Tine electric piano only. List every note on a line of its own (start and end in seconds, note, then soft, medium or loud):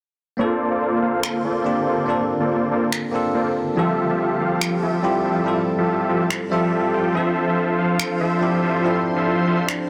0.37 1.62 A#3 medium
0.37 1.63 C4 medium
0.37 1.63 D4 medium
0.37 1.64 F4 medium
0.37 1.64 A4 medium
1.65 2.05 A#3 medium
1.65 2.05 C4 medium
1.65 2.06 D4 medium
1.65 2.06 F4 medium
1.65 2.06 G4 medium
2.06 3.10 A#3 medium
2.06 3.11 C4 medium
2.06 3.11 D4 medium
2.06 3.12 F4 medium
2.10 3.12 A4 medium
3.12 3.74 A#3 medium
3.12 3.74 C4 medium
3.12 3.75 D4 medium
3.12 3.75 F4 medium
3.12 3.76 A4 medium
3.75 5.00 G3 medium
3.75 5.01 C4 medium
3.75 5.02 F4 medium
3.75 5.02 A4 medium
5.03 5.43 G3 medium
5.03 5.43 C4 medium
5.03 5.44 E4 medium
5.03 5.44 F4 medium
5.03 5.44 G4 loud
5.44 6.48 G3 medium
5.44 6.49 C4 medium
5.44 6.49 E4 medium
5.44 6.50 F4 medium
5.48 6.50 A4 medium
6.50 7.12 G3 medium
6.50 7.12 C4 medium
6.50 7.13 F4 medium
6.50 7.13 E5 medium
6.54 7.14 A4 medium
7.13 8.38 F3 medium
7.13 8.39 C4 medium
7.13 8.39 D4 medium
7.17 8.40 A4 medium
8.41 8.81 F3 medium
8.41 8.81 C4 medium
8.41 8.82 D4 medium
8.41 8.82 E4 medium
8.41 8.82 G4 medium
8.82 9.86 F3 medium
8.82 9.87 C4 medium
8.82 9.87 D4 medium
8.82 9.88 E4 medium
8.86 9.88 A4 medium